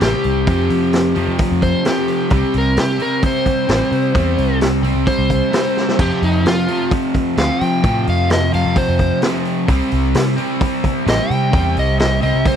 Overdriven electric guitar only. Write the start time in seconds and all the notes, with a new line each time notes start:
0.00 C3 G3
0.04 C4
0.47 F2 C3
0.51 F3
1.15 C3 F3
1.20 F2
1.84 F2 C3 F3
2.30 C3 G3
2.34 C4
2.99 C3 G3 C4
3.68 C3 G3
3.72 C4
4.14 C3 G3 C4
4.83 G3 C4
4.87 C3
5.51 C3 G3 C4
5.97 F2 C3
6.01 F3
6.67 F2 C3 F3
7.36 F2 C3 F3
7.82 F2 C3 F3
8.52 F2 C3 F3
9.21 F2 C3 F3
9.67 C3 G3 C4
10.36 C3 G3 C4
11.06 C3 G3 C4
11.51 C3 G3
11.55 C4
12.21 C3 G3 C4